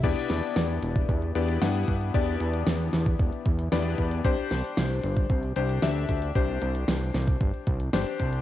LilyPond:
<<
  \new Staff \with { instrumentName = "Electric grand piano" } { \time 4/4 \key e \minor \tempo 4 = 114 <b d' e' g' d''>2~ <b d' e' g' d''>8 <b d' e' g' d''>8 <b d' e' g' fis''>4 | <b d' e' g' d''>2. <b d' e' g' d''>4 | <d' g' c''>2~ <d' g' c''>8 <d' g' c''>8 <d' g' e''>4 | <d' g' c''>2. <d' g' c''>4 | }
  \new Staff \with { instrumentName = "Analog synth bass" } { \clef bass \time 4/4 \key e \minor e,8 e,8 e,8 e,,8 e,8 e,8 g,8 g,8 | e,8 e,8 e,8 e,8 e,,8 e,8 e,8 e,8 | c,8 c,8 c,8 g,,8 c,8 c,8 d,8 d,8 | c,8 c,8 c,8 c,8 g,,8 c,8 g,,8 c,8 | }
  \new DrumStaff \with { instrumentName = "Drums" } \drummode { \time 4/4 <cymc hh bd>16 hh16 <hh sn>16 hh16 <hh sn>16 hh16 hh16 <hh bd>16 <hh bd>16 hh16 hh16 hh16 <hh sn>16 hh16 <hh bd>16 hh16 | <hh bd>16 hh16 hh16 hh16 <hh sn>16 hh16 <hh sn>16 <hh bd>16 <hh bd>16 hh16 <hh bd>16 hh16 <hh sn>16 hh16 <hh bd>16 hh16 | <hh bd>16 hh16 <hh sn>16 hh16 <hh sn>16 hh16 hh16 <hh bd>16 <hh bd>16 hh16 hh16 hh16 <hh sn>16 hh16 <hh bd>16 hh16 | <hh bd>16 hh16 hh16 hh16 <hh sn>16 hh16 <hh sn>16 <hh bd>16 <hh bd>16 hh16 <hh bd>16 hh16 <hh sn>16 hh16 <hh bd>16 hh16 | }
>>